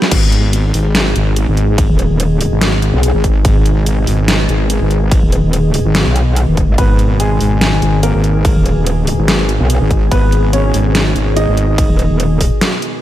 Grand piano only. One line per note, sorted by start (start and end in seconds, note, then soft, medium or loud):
6.78 7.15 B3 medium
6.78 7.15 B4 medium
7.20 7.96 G#3 medium
7.20 7.96 G#4 medium
8.03 10.04 A#3 medium
8.03 10.04 A#4 medium
10.12 10.48 B3 medium
10.12 10.48 B4 loud
10.53 11.29 C#4 medium
10.53 11.29 C#5 loud
11.37 13.02 D#4 medium
11.37 13.02 D#5 medium